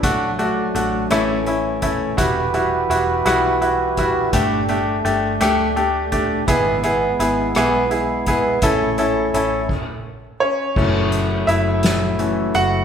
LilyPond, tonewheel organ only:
\new Staff \with { instrumentName = "Tonewheel organ" } { \time 6/8 \key e \dorian \tempo 4. = 56 << { <fis d'>4. <e cis'>4. | <e' fis' b'>2. | a2. | <gis e'>2. |
<a e'>4. r4. | <fis e'>2. | } \\ { a2. | g'2. | d'2. | b2. |
cis'4. r4. | a2. | } >> }